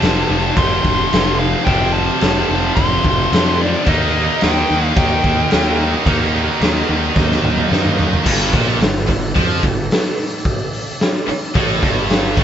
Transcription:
Already playing: distorted electric guitar F2 C3 F3, tonewheel organ F4 C5 G5, lead electric guitar A5
0.02 picked electric bass F1, distorted electric guitar F2 C3 F3, snare, crash
0.29 picked electric bass F1, distorted electric guitar F2 C3 F3
0.57 picked electric bass F1, distorted electric guitar F2 C3 F3, lead electric guitar C6, kick, crash
0.84 picked electric bass F1, kick
1.12 picked electric bass F1, distorted electric guitar F2 C3 F3, snare, crash
1.39 distorted electric guitar F2 C3 F3, lead electric guitar F5
1.65 picked electric bass F1, distorted electric guitar F2 C3 F3, lead electric guitar G5, kick, crash
1.92 lead electric guitar A5
2.21 picked electric bass F1, distorted electric guitar F2 C3 F3, snare, crash
2.50 picked electric bass F1, distorted electric guitar F2 C3 F3
2.76 picked electric bass F1, distorted electric guitar F2 C3 F3, lead electric guitar C6, kick, crash
3.04 picked electric bass F1, kick
3.32 picked electric bass F2, distorted electric guitar F2 C3 F3, snare, crash
3.61 distorted electric guitar F2 C3 F3, lead electric guitar D5
3.86 picked electric bass D#2, distorted electric guitar D#3 A#3 D#4, tonewheel organ D#4 A#4 F5, lead electric guitar D#5, kick, crash
4.41 picked electric bass D#2, distorted electric guitar D#3 A#3 D#4, lead electric guitar G5, snare, crash
4.71 picked electric bass D#2, distorted electric guitar D#3 A#3 D#4
4.96 picked electric bass D#2, distorted electric guitar D#3 A#3 D#4, lead electric guitar G5, kick, crash
5.24 picked electric bass D#2, kick
5.51 picked electric bass D#2, distorted electric guitar D#3 A#3 D#4, snare, crash
5.79 distorted electric guitar D#3 A#3 D#4
6.06 picked electric bass D#2, distorted electric guitar D#3 A#3 D#4, tonewheel organ G5, kick, crash
6.61 picked electric bass D#2, distorted electric guitar D#3 A#3 D#4, snare, crash
6.88 picked electric bass D#2, distorted electric guitar D#3 A#3 D#4
7.16 picked electric bass D#2, distorted electric guitar D#3 A#3 D#4, kick, snare
7.32 snare
7.44 picked electric bass D#2, mid tom
7.57 mid tom
7.70 picked electric bass F#2, distorted electric guitar D#3 A#3 D#4, snare
7.86 mid tom
7.98 distorted electric guitar D#3 A#3 D#4, floor tom
8.13 floor tom
8.26 picked electric bass G1, distorted electric guitar G2, tonewheel organ G3 D4 A4, kick, crash
8.53 picked electric bass A#1, distorted electric guitar A#2, kick, open hi-hat
8.80 picked electric bass G1, distorted electric guitar G2, snare, open hi-hat
9.07 picked electric bass G1, distorted electric guitar G2, kick, open hi-hat
9.35 picked electric bass F2, distorted electric guitar F3, kick, open hi-hat
9.62 picked electric bass G1, distorted electric guitar G2, kick, open hi-hat
9.91 snare, open hi-hat
10.17 open hi-hat
10.45 kick, open hi-hat
10.73 open hi-hat
11.00 snare, open hi-hat
11.28 muted distorted electric guitar stroke, muted picked electric bass stroke, open hi-hat
11.55 picked electric bass A1, distorted electric guitar A2, kick, open hi-hat
11.83 picked electric bass G1, distorted electric guitar G2, kick, open hi-hat
12.10 snare, open hi-hat
12.37 picked electric bass A1, distorted electric guitar A2, kick, open hi-hat

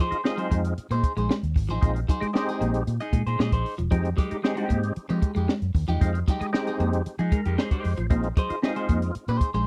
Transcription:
0.00 clean electric guitar D#4 G#4 C5
0.11 tonewheel organ D#4 F4, muted fingered electric bass stroke, closed hi-hat
0.24 tonewheel organ G#3 C4 D#4 F4, clean electric guitar D#4 G#4 D#5, muted clean electric guitar stroke, snare
0.37 clean electric guitar F#3 D#4 G#4 C5, closed hi-hat
0.51 fingered electric bass F2, clean electric guitar G#3, kick, closed hi-hat
0.65 closed hi-hat
0.78 muted fingered electric bass stroke, closed hi-hat
0.91 fingered electric bass A#2, clean electric guitar A#3 D#4 G#4 C5, closed hi-hat
1.03 muted clean electric guitar stroke, kick, closed hi-hat
1.17 fingered electric bass A#1, clean electric guitar G#3 D#4 G#4 C5, closed hi-hat
1.29 clean electric guitar G#3, snare
1.43 fingered electric bass D#2, closed hi-hat
1.56 fingered electric bass G#1, muted clean electric guitar stroke, kick, open hi-hat
1.69 fingered electric bass A1, clean electric guitar F3 D#4 G#4 C5, closed hi-hat
1.81 fingered electric bass A#1, tonewheel organ G#3 C4 D#4 F4, kick, closed hi-hat
1.95 muted clean electric guitar stroke, closed hi-hat
2.08 clean electric guitar F#3 D#4 G#4 C5, kick, closed hi-hat
2.21 clean electric guitar G#3, tonewheel organ D#4 G4, muted fingered electric bass stroke, closed hi-hat
2.33 tonewheel organ G#3 C4 D#4 G4, clean electric guitar D#4 G#4, snare
2.38 clean electric guitar C5
2.49 clean electric guitar D#4 G#4 D#5, closed hi-hat
2.61 fingered electric bass A#1, clean electric guitar A#3, closed hi-hat
2.74 closed hi-hat
2.87 fingered electric bass A#2, closed hi-hat
3.00 clean electric guitar D#4 G#4 D#5, closed hi-hat
3.13 fingered electric bass A#2, clean electric guitar G#3, kick, closed hi-hat
3.27 fingered electric bass A#2, clean electric guitar D#4 G#4 C5, closed hi-hat
3.39 fingered electric bass A#2, clean electric guitar G#3 D#4 G#4 D#5, snare
3.52 fingered electric bass A#1, clean electric guitar D#4 G#4 C5, kick, closed hi-hat
3.65 muted clean electric guitar stroke, open hi-hat
3.78 fingered electric bass E1, clean electric guitar F3, closed hi-hat
3.91 fingered electric bass F2, clean electric guitar F3, tonewheel organ G#3 C4 D#4 G4, kick, closed hi-hat
4.04 muted clean electric guitar stroke, closed hi-hat
4.17 clean electric guitar F#3 G#3 D#4 G4, kick, closed hi-hat
4.31 tonewheel organ D#4 G4, muted fingered electric bass stroke, closed hi-hat
4.42 clean electric guitar G#3 D#4 G#4, tonewheel organ G#3 C4 D#4 G4, muted clean electric guitar stroke, snare
4.55 clean electric guitar G#3 D#4 G4, closed hi-hat
4.69 fingered electric bass G#2, clean electric guitar A#3, kick, closed hi-hat
4.83 closed hi-hat
4.96 muted fingered electric bass stroke, closed hi-hat
5.09 fingered electric bass F3, clean electric guitar G#3 C4 D#4 G4, closed hi-hat
5.22 muted clean electric guitar stroke, kick, closed hi-hat
5.35 fingered electric bass F2, clean electric guitar G#3 D#4 G4, closed hi-hat
5.48 clean electric guitar G#3, snare
5.62 fingered electric bass F#2, closed hi-hat
5.75 fingered electric bass D#2, muted clean electric guitar stroke, kick, open hi-hat
5.88 fingered electric bass E2, clean electric guitar F3 G#3 D#4 G4, closed hi-hat
6.01 fingered electric bass F2, tonewheel organ G#3 C4 D#4 F4, kick, closed hi-hat
6.14 muted clean electric guitar stroke, closed hi-hat
6.28 clean electric guitar F#3 G#3 D#4 G4, kick, snare, closed hi-hat
6.40 clean electric guitar G#3, tonewheel organ D#4 G#4, muted fingered electric bass stroke, closed hi-hat
6.53 tonewheel organ G#3 C4 D#4 G4, clean electric guitar G#3 D#4 G4, snare
6.67 clean electric guitar G#3 D#4 G#4, closed hi-hat
6.80 fingered electric bass F2, clean electric guitar A#3, closed hi-hat
6.93 closed hi-hat
7.06 muted fingered electric bass stroke, closed hi-hat
7.19 fingered electric bass F3, clean electric guitar G#3 D#4 G#4, closed hi-hat
7.32 clean electric guitar G#3, tonewheel organ A#4, kick, closed hi-hat
7.45 fingered electric bass F2, clean electric guitar G#3 D#4 G4, closed hi-hat
7.58 clean electric guitar G#3 D#4 G#4, tonewheel organ C5, snare
7.71 clean electric guitar G#3 D#4 G4, kick, closed hi-hat
7.84 fingered electric bass F2, muted clean electric guitar stroke, open hi-hat
7.97 fingered electric bass A1, clean electric guitar F3, closed hi-hat
8.10 fingered electric bass A#1, tonewheel organ G#3 C4 D#4 F4, clean electric guitar A#3, kick, closed hi-hat
8.24 muted clean electric guitar stroke, closed hi-hat
8.37 clean electric guitar F#3 D#4 G#4 C5, kick, closed hi-hat
8.49 tonewheel organ D#4 F4, muted fingered electric bass stroke, closed hi-hat
8.62 tonewheel organ G#3 C4 D#4 E4, clean electric guitar D#4 G#4 D#5, muted clean electric guitar stroke, snare
8.69 tonewheel organ F4
8.76 clean electric guitar G#3 D#4 G#4 C5, closed hi-hat
8.89 fingered electric bass F2, clean electric guitar A#3, kick, closed hi-hat
9.02 closed hi-hat
9.15 muted fingered electric bass stroke, closed hi-hat
9.28 fingered electric bass A#2, clean electric guitar A#3 D#4 G#4 C5, closed hi-hat
9.41 muted clean electric guitar stroke, kick, closed hi-hat
9.54 fingered electric bass A#1, clean electric guitar G#3 D#4 G#4 C5, closed hi-hat

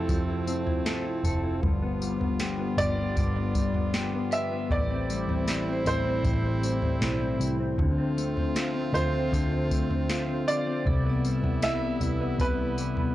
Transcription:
Already playing: brass ensemble C3 F3 A3 C4, clean electric guitar C4 E4 A4, felt piano A4
0.09 picked electric bass F2, clean electric guitar F3, kick, floor tom, tambourine
0.28 clean electric guitar E4
0.47 clean electric guitar C4, tambourine
0.66 clean electric guitar E4, floor tom
0.86 picked electric bass G2, clean electric guitar A4, snare, tambourine
1.05 clean electric guitar E4
1.24 picked electric bass F1, clean electric guitar A4, floor tom, tambourine
1.44 clean electric guitar E4
1.62 picked electric bass G1, clean electric guitar G2, brass ensemble D3 G3 B3 F4, kick, floor tom
1.82 clean electric guitar B3
2.02 clean electric guitar G3, tambourine
2.21 clean electric guitar B3, floor tom
2.40 clean electric guitar G4, snare, tambourine
2.59 clean electric guitar B3
2.77 picked electric bass G1, clean electric guitar G4, felt piano D5, floor tom, tambourine
2.98 clean electric guitar B3
3.16 picked electric bass G1, clean electric guitar G2, vibraphone D5, kick, floor tom, tambourine
3.36 clean electric guitar B3
3.55 clean electric guitar G3, kick, tambourine
3.74 clean electric guitar B3, floor tom
3.94 clean electric guitar G4, snare, tambourine
4.13 clean electric guitar B3
4.31 clean electric guitar G4, vibraphone B4, felt piano E5, tambourine
4.52 clean electric guitar B3
4.69 picked electric bass A1, clean electric guitar A2, brass ensemble E3 G3 A3 C4 E4, felt piano D5, kick, floor tom
4.90 clean electric guitar C4
5.10 clean electric guitar G3, tambourine
5.28 picked electric bass A1, clean electric guitar C4, floor tom
5.47 clean electric guitar E4, vibraphone G4, snare, tambourine
5.67 clean electric guitar C4
5.73 vibraphone C5
5.86 picked electric bass A1, clean electric guitar E4, felt piano C5, floor tom, tambourine
5.97 vibraphone D5
6.05 clean electric guitar C4
6.24 picked electric bass A1, clean electric guitar A2, kick, floor tom, tambourine
6.43 clean electric guitar C4
6.63 clean electric guitar G3, tambourine
6.82 clean electric guitar C4, floor tom
7.01 picked electric bass B1, clean electric guitar E4, snare, tambourine
7.20 clean electric guitar C4
7.39 picked electric bass C2, clean electric guitar E4, tambourine
7.60 clean electric guitar C4
7.78 picked electric bass D2, clean electric guitar D3, brass ensemble D3 F3 A3 C4 F4, kick, floor tom
7.98 clean electric guitar C4
8.17 clean electric guitar A3, tambourine
8.36 clean electric guitar C4, floor tom
8.55 clean electric guitar F4, snare, tambourine
8.74 clean electric guitar C4
8.93 picked electric bass D2, clean electric guitar F4, felt piano C5, floor tom, tambourine
9.13 clean electric guitar C4
9.32 picked electric bass D2, clean electric guitar D3, kick, floor tom, tambourine
9.51 clean electric guitar C4
9.71 clean electric guitar A3, kick, tambourine
9.90 clean electric guitar C4, floor tom
10.09 clean electric guitar F4, snare, tambourine
10.29 clean electric guitar C4
10.47 clean electric guitar F4, felt piano D5, tambourine
10.67 clean electric guitar C4
10.86 picked electric bass C2, clean electric guitar C3, brass ensemble C3 E3 G3 B3 E4, vibraphone A4, kick, floor tom
11.05 clean electric guitar B3
11.09 vibraphone D5
11.24 clean electric guitar G3, tambourine
11.34 vibraphone E5
11.43 picked electric bass C2, clean electric guitar B3, floor tom
11.62 clean electric guitar E4, felt piano E5, snare, tambourine
11.82 clean electric guitar B3
12.01 picked electric bass C2, clean electric guitar E4, floor tom, tambourine
12.20 clean electric guitar B3
12.39 picked electric bass C2, clean electric guitar C3, felt piano B4, kick, floor tom, tambourine
12.59 clean electric guitar B3
12.78 clean electric guitar G3, tambourine
12.97 clean electric guitar B3, floor tom

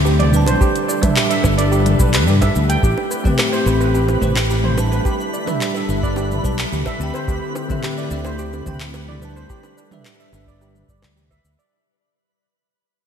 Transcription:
Already playing: fretless electric bass D2, string machine D3 A3 C4 E4 G4
0.05 steel pan G4, high bongo, shaker
0.19 steel pan D5, closed hi-hat, mid tom
0.31 tine electric piano G3 D4 B4, shaker
0.37 tine electric piano A5
0.46 steel pan C5, closed hi-hat, high bongo, shaker
0.60 string machine G3 D4 A4 B4, steel pan G4, kick, shaker
0.76 closed hi-hat, shaker
0.88 steel pan D5, shaker
1.01 tine electric piano G3 D4 B4 E5, kick, closed hi-hat, mid tom, high bongo, shaker
1.16 steel pan G4, clap, shaker
1.30 steel pan E5, closed hi-hat, shaker
1.43 fretless electric bass G1, tine electric piano G3 D4 B4 E5, kick, high bongo, shaker
1.58 steel pan D5, closed hi-hat, shaker
1.72 steel pan G4, shaker
1.86 closed hi-hat, mid tom, shaker
2.00 fretless electric bass B1, steel pan B4, kick, high bongo, shaker
2.14 steel pan B4, clap, closed hi-hat, shaker
2.27 fretless electric bass G2, steel pan G4, mid tom, shaker
2.41 steel pan E5, kick, closed hi-hat, high bongo, shaker
2.56 fretless electric bass D2, shaker
2.69 steel pan G5, closed hi-hat, shaker
2.82 fretless electric bass A1, string machine A3 C4 E4 G4 B5, steel pan G4, synth texture B4 B5, kick, shaker
2.98 high bongo
3.11 steel pan B4, shaker
3.24 tine electric piano A3 C4 G4 B4, kick, mid tom, shaker
3.39 steel pan G4, clap, high bongo, shaker
3.53 steel pan C5, shaker
3.65 fretless electric bass A1, tine electric piano A3 C4 G4 B5, high bongo, shaker
3.81 steel pan B4, shaker
3.94 steel pan G4, shaker
4.08 high bongo, shaker
4.21 fretless electric bass A1, tine electric piano A3 G4 B4 C5, steel pan B4, kick, mid tom, shaker
4.36 clap, high bongo, shaker
4.50 steel pan G4, shaker
4.64 steel pan C5, mid tom
4.74 tine electric piano G3 D4 B4, high bongo, shaker
4.80 tine electric piano A5
4.92 steel pan B4, shaker
5.05 string machine G3 D4 A4, steel pan G4, kick, high bongo, shaker
5.20 shaker
5.33 steel pan D5, shaker
5.46 tine electric piano G3 D4 B4 E5, mid tom, high bongo, shaker
5.61 steel pan G4, clap, shaker
5.74 steel pan E5, high bongo, shaker
5.88 fretless electric bass G1, tine electric piano G3 D4 B4 E5, shaker
6.03 steel pan D5, kick, shaker
6.16 steel pan G4, high bongo, shaker
6.31 mid tom, shaker
6.43 fretless electric bass B1, tine electric piano G3 D4 B4 A5, steel pan D5, kick, high bongo, shaker
6.59 clap, shaker
6.72 fretless electric bass D2, steel pan G4, mid tom, shaker
6.86 steel pan E5, kick, high bongo, shaker
6.98 fretless electric bass D2, tine electric piano D3 C4 G4, string machine D3 A3 C4 E4 G4, shaker
7.03 tine electric piano G5
7.14 steel pan C5, high bongo, shaker
7.28 fretless electric bass D2, steel pan G4, kick, shaker
7.55 steel pan C5, high bongo, shaker
7.69 tine electric piano D3 C4 G4 E5, kick, mid tom, shaker
7.83 steel pan G4, clap, high bongo, shaker
7.98 steel pan D5, shaker
8.10 fretless electric bass D2, tine electric piano D3 C4 G4 E5, shaker
8.25 steel pan C5, high bongo, shaker
8.39 steel pan G4, shaker
8.53 high bongo, shaker
8.66 fretless electric bass D2, tine electric piano D3 C4 G4 G5, steel pan C5, kick, mid tom, shaker
8.80 clap, shaker
8.94 steel pan G4, high bongo, shaker
9.08 steel pan D5, mid tom
9.20 tine electric piano G3 D4 B4, high bongo, shaker
9.25 tine electric piano A5
9.36 steel pan C5, shaker
9.49 string machine G3 D4 A4 B4, steel pan G4, kick, shaker
9.63 high bongo, shaker
9.77 steel pan D5, shaker
9.91 tine electric piano G3 D4 B4 E5, mid tom, high bongo, shaker
10.05 steel pan G4, clap, shaker
10.20 steel pan E5, shaker
10.32 fretless electric bass G1, tine electric piano G3 D4 B4 E5, high bongo, shaker
10.47 steel pan D5, kick, shaker
10.61 steel pan G4, high bongo, shaker
10.75 mid tom, shaker
10.88 fretless electric bass G1, steel pan D5, kick, shaker
11.02 fretless electric bass D2, clap, high bongo, shaker
11.17 steel pan G4, mid tom, shaker
11.31 steel pan E5, kick, high bongo, shaker
11.45 fretless electric bass D2, shaker
11.59 steel pan D5, shaker

